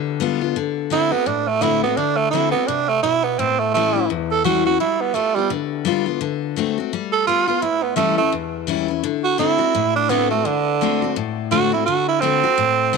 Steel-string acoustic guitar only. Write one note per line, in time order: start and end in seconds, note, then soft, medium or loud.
0.00 0.53 D3 medium
0.20 0.41 G3 medium
0.20 0.41 B3 loud
0.20 0.40 F4 loud
0.41 0.57 B3 soft
0.41 0.55 F4 medium
0.56 0.89 D3 medium
0.90 1.11 D3 medium
0.90 1.12 A3 medium
0.90 1.12 C4 loud
0.90 1.11 F#4 medium
1.12 1.27 C4 soft
1.12 1.26 F#4 medium
1.26 1.94 A2 medium
1.61 1.82 D3 medium
1.61 1.82 A3 medium
1.61 1.83 C4 medium
1.61 1.82 F#4 medium
1.84 1.98 C4 medium
1.84 1.97 F#4 medium
1.97 2.32 D3 medium
2.33 2.53 D3 medium
2.33 2.53 A3 medium
2.33 2.54 C4 medium
2.33 2.52 F#4 medium
2.53 2.68 C4 soft
2.53 2.67 F#4 medium
2.68 3.02 C3 medium
3.03 3.37 B2 medium
3.39 4.06 A2 medium
3.75 3.94 E3 medium
3.75 3.95 G3 medium
3.75 3.95 C#4 medium
3.75 3.94 E4 medium
3.96 4.10 C#4 soft
3.96 4.09 E4 medium
4.10 4.77 E2 medium
4.44 4.65 E3 medium
4.44 4.65 G3 medium
4.44 4.65 C#4 loud
4.44 4.64 E4 loud
4.65 4.80 C#4 soft
4.65 4.79 E4 medium
4.80 5.13 G3 medium
5.14 5.35 G3 medium
5.14 5.35 B3 medium
5.14 5.35 F4 loud
5.36 5.51 B3 medium
5.36 5.50 F4 medium
5.50 6.18 D3 loud
5.85 6.05 G3 loud
5.85 6.06 B3 loud
5.85 6.05 F4 loud
6.06 6.21 B3 soft
6.06 6.20 F4 medium
6.21 6.55 D3 medium
6.56 6.77 D3 medium
6.56 6.77 A3 medium
6.56 6.77 C4 medium
6.56 6.77 F#4 medium
6.78 6.92 C4 medium
6.78 6.91 F#4 medium
6.93 7.26 G3 medium
7.27 7.47 G3 medium
7.27 7.48 B3 loud
7.27 7.46 F4 medium
7.48 7.62 B3 medium
7.48 7.61 F4 medium
7.62 8.30 A2 medium
7.96 8.17 E3 medium
7.96 8.17 G3 medium
7.96 8.18 C#4 medium
7.96 8.17 E4 loud
8.18 8.33 C#4 medium
8.18 8.32 E4 medium
8.32 9.01 E2 medium
8.67 8.88 E3 medium
8.67 8.88 G3 medium
8.67 8.88 C#4 medium
8.67 8.87 E4 loud
8.88 9.04 C#4 medium
8.88 9.03 E4 medium
9.04 9.37 D3 medium
9.38 9.59 D3 medium
9.38 9.59 A3 medium
9.38 9.60 C4 medium
9.38 9.57 F#4 medium
9.59 9.74 C4 medium
9.59 9.73 F#4 medium
9.75 10.42 A2 medium
10.09 10.30 D3 medium
10.09 10.30 A3 medium
10.09 10.30 C4 loud
10.09 10.29 F#4 medium
10.31 10.45 C4 soft
10.31 10.44 F#4 medium
10.45 10.80 D3 medium
10.81 11.01 D3 medium
10.81 11.01 A3 medium
10.81 11.02 C4 medium
10.81 11.01 F#4 medium
11.02 11.16 C4 medium
11.02 11.16 F#4 medium
11.16 11.84 A2 medium
11.51 11.71 D3 medium
11.51 11.72 A3 loud
11.51 11.72 C4 loud
11.51 11.71 F#4 medium
11.72 11.87 C4 medium
11.72 11.86 F#4 medium
11.88 12.21 D3 medium
12.22 12.42 D3 medium
12.22 12.43 A3 medium
12.22 12.43 C4 medium
12.22 12.43 F#4 loud
12.44 12.58 C4 medium
12.44 12.57 F#4 medium
12.58 12.97 A2 medium
12.93 12.97 D3 medium
12.93 12.97 A3 loud
12.93 12.97 C4 medium